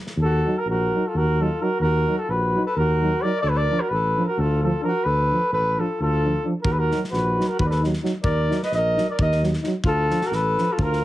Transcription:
0.07 snare soft
0.17 0.44 D#2 medium
0.22 0.60 F#4 medium
0.22 0.60 A4 loud
0.45 0.55 F#3 medium
0.45 0.54 D#4 medium
0.58 0.69 F#4 soft
0.58 0.68 A#4 medium
0.65 0.92 A#1 medium
0.70 1.09 F#4 medium
0.70 1.09 A#4 medium
0.94 1.02 F#3 medium
0.94 1.03 D#4 medium
1.08 1.18 F4 medium
1.08 1.19 A4 medium
1.14 1.51 D#2 medium
1.14 1.44 F#4 medium
1.14 1.42 A#4 medium
1.40 1.48 F#3 medium
1.40 1.48 D#4 medium
1.40 1.65 F4 medium
1.40 1.63 A4 medium
1.60 1.69 F#3 medium
1.60 1.69 D#4 medium
1.60 1.83 F#4 medium
1.60 1.80 A#4 medium
1.80 2.07 D#2 loud
1.80 2.17 F#4 medium
1.80 2.15 A#4 loud
2.07 2.17 F#3 medium
2.07 2.15 D#4 medium
2.17 2.31 A4 medium
2.22 2.32 F4 medium
2.29 2.55 A#1 medium
2.29 2.66 F#4 medium
2.29 2.65 B4 loud
2.55 2.64 F#3 medium
2.55 2.64 D#4 medium
2.66 2.76 A4 medium
2.66 2.76 B4 medium
2.76 3.13 D#2 loud
2.76 3.25 F#4 medium
2.76 3.24 A#4 loud
3.01 3.09 F#3 medium
3.01 3.10 D#4 medium
3.22 3.31 F#3 medium
3.22 3.31 D#4 medium
3.22 3.41 A#4 medium
3.22 3.41 D5 medium
3.41 3.69 D2 medium
3.41 3.52 A4 medium
3.41 3.51 D5 loud
3.49 3.64 A4 medium
3.49 3.58 B4 medium
3.57 3.82 D5 loud
3.63 3.83 A#4 loud
3.69 3.78 F3 medium
3.69 3.78 D4 medium
3.80 3.94 F#4 medium
3.80 3.91 A#4 medium
3.89 4.17 A1 medium
3.89 4.28 A4 medium
3.89 4.25 B4 loud
4.17 4.26 F3 medium
4.17 4.25 D4 medium
4.26 4.44 F#4 medium
4.26 4.40 A#4 medium
4.38 4.74 D2 loud
4.38 4.62 A4 medium
4.42 4.64 F4 medium
4.62 4.72 F3 medium
4.62 4.70 D4 medium
4.62 4.82 A4 medium
4.67 4.84 F4 medium
4.81 4.92 F3 medium
4.81 4.90 D4 medium
4.81 5.05 A#4 medium
4.87 5.08 F#4 medium
5.04 5.31 D2 loud
5.04 5.52 A4 medium
5.04 5.51 B4 loud
5.29 5.40 F3 medium
5.29 5.38 D4 medium
5.52 5.78 A1 medium
5.52 5.83 A4 medium
5.52 5.81 B4 loud
5.78 5.86 F3 medium
5.78 5.87 D4 medium
5.78 6.00 F4 medium
5.78 6.00 A4 medium
6.00 6.36 D2 medium
6.00 6.46 F4 medium
6.00 6.47 A4 loud
6.24 6.33 F3 medium
6.24 6.32 D4 medium
6.43 6.53 F3 medium
6.43 6.52 D4 medium
6.62 6.91 D#2 medium
6.62 6.74 F#4 medium
6.62 6.73 A#4 loud
6.62 kick medium
6.72 6.80 A4 medium
6.72 6.80 B4 medium
6.78 7.00 F#4 medium
6.78 7.00 A#4 loud
6.90 7.02 F#3 medium
6.90 6.99 D#4 medium
6.90 snare soft
7.04 snare soft
7.11 7.38 A#1 medium
7.11 7.50 F#4 medium
7.11 7.49 B4 medium
7.11 snare soft
7.37 7.48 F#3 medium
7.37 7.46 D#4 medium
7.37 snare soft
7.47 7.59 F#4 medium
7.47 7.58 A#4 medium
7.59 7.95 D#2 loud
7.59 7.67 F#4 medium
7.59 7.68 B4 medium
7.59 kick medium
7.66 7.72 A#4 medium
7.66 7.82 B4 medium
7.66 7.70 D5 medium
7.70 7.83 A4 medium
7.70 snare soft
7.82 7.93 F#3 medium
7.82 7.91 D#4 medium
7.82 snare soft
7.93 snare soft
8.01 8.12 F#3 medium
8.01 8.10 D#4 medium
8.05 snare soft
8.24 8.50 D#2 medium
8.24 8.58 A#4 medium
8.24 8.58 D5 loud
8.24 kick medium
8.49 8.59 F#3 medium
8.49 8.58 D#4 medium
8.49 snare soft
8.63 8.72 B4 medium
8.63 8.72 D#5 medium
8.63 snare soft
8.72 8.98 A#1 medium
8.72 9.07 D#5 loud
8.72 snare soft
8.77 9.09 A#4 medium
8.95 9.06 F#3 medium
8.95 9.04 D#4 medium
8.95 snare soft
9.10 9.19 A#4 medium
9.10 9.19 D5 medium
9.19 9.56 D#2 loud
9.19 9.42 A#4 medium
9.19 9.42 D#5 loud
9.19 kick loud
9.32 snare soft
9.42 9.51 F#3 medium
9.42 9.51 D#4 medium
9.42 snare soft
9.53 snare soft
9.62 9.71 D#4 medium
9.62 snare soft
9.66 9.74 F#3 medium
9.84 10.10 D2 loud
9.84 10.24 F4 loud
9.84 kick medium
9.88 10.28 A4 loud
10.10 10.19 F3 medium
10.10 10.19 D4 medium
10.10 snare soft
10.21 10.35 F#4 medium
10.21 snare soft
10.26 10.36 A#4 medium
10.31 10.57 A1 medium
10.31 10.74 A4 loud
10.31 10.74 B4 loud
10.31 snare soft
10.57 10.67 F3 medium
10.57 10.65 D4 medium
10.57 snare soft
10.72 10.82 F4 medium
10.72 10.84 A4 medium
10.78 11.04 D2 loud
10.78 kick medium
10.82 11.04 F4 loud
10.82 11.04 A#4 loud
10.93 snare soft
11.01 11.04 D4 medium

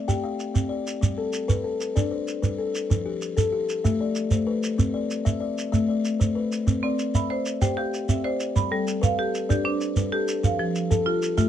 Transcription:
0.00 0.24 D5 medium
0.08 0.40 G4 medium
0.08 0.55 G5 medium
0.08 shekere medium
0.24 0.71 F5 soft
0.40 shekere soft
0.54 0.86 C4 medium
0.54 shekere medium
0.69 1.17 D5 medium
0.87 shekere medium
1.01 1.33 G3 medium
1.01 shekere medium
1.18 1.63 A4 medium
1.33 shekere medium
1.48 1.80 B4 medium
1.48 shekere medium
1.64 2.12 A4 medium
1.81 shekere medium
1.96 2.27 D4 medium
1.96 2.43 D5 medium
1.96 shekere medium
2.11 2.59 C5 soft
2.28 shekere soft
2.42 2.74 G3 medium
2.42 2.90 B4 medium
2.42 shekere medium
2.58 3.06 A4 medium
2.75 shekere medium
2.90 3.21 F3 medium
2.90 shekere medium
3.06 3.51 G4 medium
3.22 shekere medium
3.37 3.68 A4 medium
3.37 shekere medium
3.52 4.00 G4 medium
3.69 shekere medium
3.84 4.16 A3 medium
3.84 4.32 E5 medium
3.84 shekere medium
4.01 4.48 D5 medium
4.15 shekere medium
4.31 4.63 A3 medium
4.31 4.79 C5 medium
4.31 shekere medium
4.47 4.94 B4 medium
4.63 shekere medium
4.78 5.10 C4 medium
4.78 shekere medium
4.94 5.39 D5 medium
5.11 shekere medium
5.25 5.57 E5 medium
5.25 shekere medium
5.40 5.87 D5 medium
5.58 shekere medium
5.72 6.04 A3 medium
5.72 6.20 E5 medium
5.72 shekere medium
5.88 6.36 D5 medium
6.05 shekere soft
6.20 6.51 A3 medium
6.20 6.67 C5 medium
6.20 shekere medium
6.35 6.83 B4 medium
6.52 shekere medium
6.67 6.98 C4 medium
6.67 shekere medium
6.83 7.14 C4 medium
6.83 7.29 D5 medium
6.99 shekere medium
7.15 7.46 E5 medium
7.15 7.62 B5 medium
7.15 shekere medium
7.30 7.60 C5 medium
7.30 7.78 D5 medium
7.46 shekere medium
7.62 7.93 G4 medium
7.62 8.09 C5 medium
7.62 8.09 G5 medium
7.62 shekere medium
7.77 8.09 G4 medium
7.77 8.25 F5 medium
7.94 shekere soft
8.09 8.40 C4 medium
8.09 8.56 E5 medium
8.09 shekere medium
8.24 8.72 C5 medium
8.24 8.72 D5 medium
8.40 shekere medium
8.56 8.87 G3 medium
8.56 8.87 B5 medium
8.56 shekere medium
8.71 9.03 G3 medium
8.71 9.17 A4 medium
8.87 shekere medium
9.02 9.34 B4 medium
9.02 9.50 F5 medium
9.02 shekere medium
9.18 9.49 G4 medium
9.18 9.65 A4 medium
9.35 shekere medium
9.49 9.81 D4 medium
9.49 9.97 G4 medium
9.49 9.97 D5 medium
9.49 shekere medium
9.64 9.97 D4 medium
9.64 10.12 C5 medium
9.81 shekere medium
9.96 10.28 G3 medium
9.96 10.44 B4 soft
9.96 shekere medium
10.12 10.60 G4 medium
10.12 10.60 A4 medium
10.28 shekere medium
10.43 10.75 F3 medium
10.43 10.76 F5 medium
10.43 shekere medium
10.59 10.91 F3 medium
10.59 11.05 G4 medium
10.75 shekere medium
10.90 11.22 A4 medium
10.90 shekere medium
11.06 11.36 F4 medium
11.06 11.49 G4 medium
11.22 shekere medium
11.37 11.49 A3 medium
11.37 11.49 F4 medium
11.37 11.49 E5 medium
11.37 shekere medium

